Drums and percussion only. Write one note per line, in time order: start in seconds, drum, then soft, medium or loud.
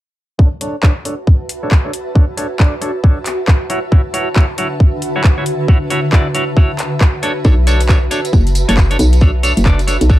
0.39 kick loud
0.61 open hi-hat loud
0.83 kick loud
0.83 clap loud
1.05 open hi-hat loud
1.27 kick loud
1.49 open hi-hat loud
1.71 kick loud
1.71 clap loud
1.93 open hi-hat loud
2.15 kick loud
2.38 open hi-hat loud
2.60 kick loud
2.60 clap loud
2.82 open hi-hat medium
3.04 kick loud
3.26 clap medium
3.26 open hi-hat loud
3.48 kick loud
3.48 clap loud
3.70 open hi-hat loud
3.92 kick loud
4.14 open hi-hat loud
4.36 kick loud
4.36 clap loud
4.58 open hi-hat loud
4.80 kick loud
5.02 open hi-hat loud
5.24 kick loud
5.24 clap loud
5.46 open hi-hat loud
5.68 kick loud
5.90 open hi-hat loud
6.12 kick loud
6.12 clap loud
6.35 open hi-hat medium
6.57 kick loud
6.79 clap medium
6.79 open hi-hat medium
7.01 kick loud
7.01 clap loud
7.23 open hi-hat medium
7.44 kick loud
7.44 tambourine soft
7.67 open hi-hat medium
7.67 tambourine medium
7.81 closed hi-hat medium
7.81 tambourine soft
7.89 kick loud
7.89 clap loud
7.89 tambourine soft
8.11 open hi-hat medium
8.11 tambourine medium
8.25 closed hi-hat medium
8.25 tambourine soft
8.33 kick loud
8.33 tambourine medium
8.47 closed hi-hat soft
8.47 tambourine soft
8.55 open hi-hat medium
8.55 tambourine medium
8.69 closed hi-hat medium
8.69 tambourine soft
8.77 kick loud
8.77 clap loud
8.77 tambourine soft
8.91 closed hi-hat soft
8.91 tambourine soft
8.99 open hi-hat medium
8.99 tambourine medium
9.13 closed hi-hat medium
9.13 tambourine soft
9.21 kick loud
9.21 tambourine soft
9.43 open hi-hat loud
9.43 tambourine medium
9.57 closed hi-hat medium
9.57 tambourine soft
9.66 kick loud
9.66 clap loud
9.66 tambourine soft
9.79 closed hi-hat soft
9.79 tambourine soft
9.88 open hi-hat loud
9.88 tambourine medium
10.01 closed hi-hat medium
10.01 tambourine soft
10.10 kick loud
10.10 tambourine soft